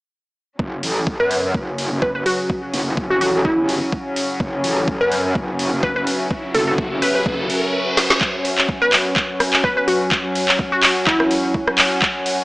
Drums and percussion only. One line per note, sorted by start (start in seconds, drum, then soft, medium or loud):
0.59 kick loud
0.83 open hi-hat loud
1.07 kick medium
1.31 open hi-hat medium
1.54 kick loud
1.78 open hi-hat medium
2.02 kick medium
2.26 open hi-hat medium
2.50 kick loud
2.74 open hi-hat loud
2.97 kick loud
3.21 open hi-hat loud
3.45 kick loud
3.69 open hi-hat loud
3.92 kick medium
4.16 open hi-hat loud
4.40 kick loud
4.64 open hi-hat loud
4.88 kick loud
5.12 open hi-hat loud
5.35 kick loud
5.59 open hi-hat loud
5.83 kick loud
6.07 open hi-hat loud
6.31 kick loud
6.54 open hi-hat loud
6.78 kick loud
7.02 open hi-hat loud
7.26 kick loud
7.50 open hi-hat loud
7.97 snare medium
7.97 open hi-hat loud
8.10 snare medium
8.21 kick loud
8.21 clap soft
8.45 open hi-hat loud
8.58 clap soft
8.69 kick loud
8.93 clap soft
8.93 open hi-hat loud
9.16 kick loud
9.16 clap soft
9.40 cross-stick medium
9.40 open hi-hat loud
9.53 clap soft
9.64 kick medium
9.88 open hi-hat loud
10.11 kick loud
10.11 clap medium
10.35 open hi-hat loud
10.48 clap soft
10.59 kick loud
10.83 clap medium
10.83 open hi-hat loud
11.07 kick loud
11.07 clap medium
11.20 cross-stick medium
11.31 open hi-hat loud
11.54 kick loud
11.68 cross-stick medium
11.78 clap medium
11.78 open hi-hat loud
12.02 kick loud
12.02 clap medium
12.26 open hi-hat loud